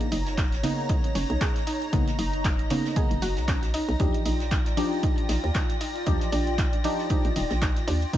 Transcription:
Already playing: D#4 F4 C#5 A#5 A#6
0.01 closed hi-hat
0.12 F#1 D#4, closed hi-hat, open hi-hat, ride
0.22 C#5
0.26 snare, closed hi-hat
0.37 D#4, kick, snare, clap, closed hi-hat
0.52 snare, closed hi-hat
0.63 C#3 A#3 B3 D#4, open hi-hat, ride
0.89 D#4, kick, closed hi-hat
1.04 closed hi-hat
1.15 F#1 C#4, snare, closed hi-hat, open hi-hat, ride
1.30 B1, closed hi-hat
1.41 G#4, kick, snare, clap, closed hi-hat
1.53 A#5, snare, closed hi-hat
1.67 D#4, closed hi-hat, open hi-hat, ride
1.82 closed hi-hat
1.92 B1 C#3 A#3 B3 D#4 D#5, kick, closed hi-hat
2.07 snare, closed hi-hat
2.19 F#1 D#4, closed hi-hat, open hi-hat, ride
2.33 closed hi-hat
2.44 D#4, kick, snare, clap, closed hi-hat
2.59 closed hi-hat
2.70 C#3 A#3 B3 C#4 D#4, closed hi-hat, open hi-hat, ride
2.85 snare
2.96 C#3 A#3 B3 D#4 G#4, kick, closed hi-hat
3.11 F#1, closed hi-hat
3.22 F#1 F#4, snare, closed hi-hat, open hi-hat, ride
3.37 B1, snare, closed hi-hat
3.48 C#4, kick, snare, clap, closed hi-hat
3.63 snare, closed hi-hat
3.73 D#4, closed hi-hat, open hi-hat, ride
3.88 B1, closed hi-hat
3.99 D#2 F3 D4 D#4 F4 G4 D5 G5 A#6, kick, closed hi-hat
4.14 closed hi-hat
4.26 A#1 D#4, closed hi-hat, open hi-hat, ride
4.40 snare, closed hi-hat
4.51 D#4, kick, snare, clap, closed hi-hat
4.59 D5
4.66 snare, closed hi-hat
4.77 F3 D4 D#4 G4, open hi-hat, ride
5.03 D#4, kick, closed hi-hat
5.18 closed hi-hat
5.29 A#1 D#4, snare, closed hi-hat, open hi-hat, ride
5.44 D#2, closed hi-hat
5.54 D#4, kick, snare, clap, closed hi-hat
5.68 G5, snare, closed hi-hat
5.80 D#4, closed hi-hat, open hi-hat, ride
5.95 closed hi-hat
6.06 D#2 F3 D4 D#4 G4, kick, closed hi-hat
6.21 snare, closed hi-hat
6.32 A#1 D4, closed hi-hat, open hi-hat, ride
6.47 closed hi-hat
6.58 D#4, kick, snare, clap, closed hi-hat
6.73 closed hi-hat
6.84 F3 D4 D#4 G4, closed hi-hat, open hi-hat, ride
6.99 snare
7.09 F3 D4 D#4 G4, kick, closed hi-hat
7.25 A#1, closed hi-hat
7.36 D#1 D#4, snare, closed hi-hat, open hi-hat, ride
7.50 A#1, snare, closed hi-hat
7.61 D#4, kick, snare, clap, closed hi-hat
7.76 snare, closed hi-hat
7.88 D#2 D4, closed hi-hat, open hi-hat, ride
8.02 closed hi-hat
8.13 B1 C#3 A#3 B3 D#4 C#5 A#5, kick, closed hi-hat

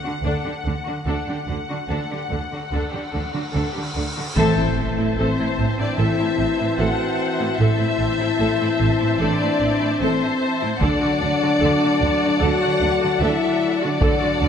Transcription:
Already playing: F#5
0.03 D3 D4 F#4
0.23 D2 D3 D4 A4
0.44 D3 D4 G4
0.63 D2 D4 A4
0.67 D3
0.85 D3 D4 F#4
1.06 D2 D3 D4 A4 F#5, cymbal swell
1.28 D3 D4 G4
1.47 D2 D3 D4 A4
1.68 D3 D4 F#4
1.89 D2 D3 D4 A4
2.11 D3 D4 G4
2.30 D2 D3 D4 A4
2.52 D3 D4 F#4
2.72 D2 D3 D4 A4
2.91 D3 D4 G4
3.11 D2 D3 D4 A4
3.33 D3 D4 F#4
3.51 D2 D3 A4
3.55 D4
3.72 D4 G4
3.76 D3
3.94 D2 D3 D4 A4
4.17 D3 D4 F#4
4.36 A1 A2 E3 A3 C4 A4 C5 E5 A5, taiko, impact
4.58 A2 E4
4.77 A1 A2 C4
4.98 A2 E4
5.17 A1 A2 C4 A4 C5
5.38 A2 E4
5.58 A1 A2 C4, taiko
5.78 A2 D4 E4 D5
5.98 A1 A2 E4 A4 E5
6.18 A2 E4
6.38 A1 A2 C4
6.58 A2 E4
6.78 A1 A2 F#4 A4 F#5
7.39 A2 E4
7.58 A1 A2 E3 C4 E4 A4 C5 E5 A5
7.79 A2 E4
7.99 A1 A2 C4
8.18 A2 E4
8.39 A1 A2 A4
8.60 A2 E4
8.80 A1 A2 C4
8.99 A2 E4
9.19 A1 A2 D4 A4 D5
9.40 A2 E4
9.60 A1 A2 C4
9.80 A2 E4
10.00 A1 A2 C4 A4 C5
10.61 A2 E4
10.80 D2 D3 F#3 A3 D4 A4 D5 F#5 A5, taiko
11.01 D3 F#4
11.20 D2 D3 D4
11.41 D3 F#4
11.61 D2 D3 A4
11.80 F#4
11.85 D3
12.00 D2 D4
12.04 D3
12.20 F#4
12.26 D3
12.39 D2 A4 F#5
12.44 D3 F#4
12.60 F#4
12.65 D3
12.80 D2 D4
12.85 D3
13.01 D3 F#4
13.20 D2 D3 E4 A4 E5
13.81 D3 D4 F#4 D5
13.99 D2 F#3 A3 A4 D5 F#5 A5, taiko
14.04 D3
14.21 D3 F#4
14.42 D2 D3 D4

